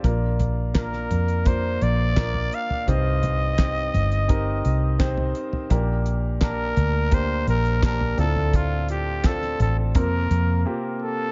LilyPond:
<<
  \new Staff \with { instrumentName = "Trumpet" } { \time 4/4 \key g \minor \tempo 4 = 85 r4 bes'4 c''8 d''4 f''8 | ees''2.~ ees''8 r8 | r4 bes'4 c''8 bes'8 bes'8 a'8 | f'8 g'8 a'8 a'8 bes'4 r8 a'8 | }
  \new Staff \with { instrumentName = "Grand piano" } { \time 4/4 \key g \minor <bes d' f' bes'>4 <bes d' f' bes'>4 <bes d' f' bes'>4 <bes d' f' bes'>4 | <c' ees' g' c''>4 <c' ees' g' ees''>4 <c' ees' g' bes'>4 <c' ees' g' c''>4 | <bes d' g' bes'>4 <bes d' g' a''>4 <bes d' g' bes'>4 <bes d' g' a''>8 <c' d' f' a'>8~ | <c' d' f' a'>4 <c' d' f' a'>4 <bes c' f' bes'>4 <bes c' f' g'>4 | }
  \new Staff \with { instrumentName = "Grand piano" } { \clef bass \time 4/4 \key g \minor r1 | g,4. r2 r8 | bes,4. r2 a,8~ | a,4 r4 c4. r8 | }
  \new Staff \with { instrumentName = "Fingered electric bass" } { \clef bass \time 4/4 \key g \minor bes,,4. f,4 bes,,4 r8 | c,4. g,,4 c,4 r8 | bes,,4. d,4 bes,,4 d,8~ | d,4. a,,8 f,8 f,8 r4 | }
  \new DrumStaff \with { instrumentName = "Drums" } \drummode { \time 4/4 <hh bd>8 <hh tomfh>8 <hc hh bd sn>16 sn16 <hh tomfh>16 hh16 <hh bd>8 hh8 <hc hh bd sn>16 tomfh16 hh16 tomfh16 | <hh bd>8 <hh tomfh>8 <hc hh bd sn>8 <hh tomfh>16 hh16 <hh bd>8 hh8 <hc hh bd sn>16 tomfh16 hh16 tomfh16 | <hh bd>8 hh8 <hc hh bd sn>8 <hh tomfh>8 <hh bd>8 hh16 hh16 <hc hh bd sn>16 tomfh16 hh16 tomfh16 | <hh bd>8 hh8 <hc hh bd sn>16 sn16 <hh tomfh>8 <hh bd>8 hh8 r4 | }
>>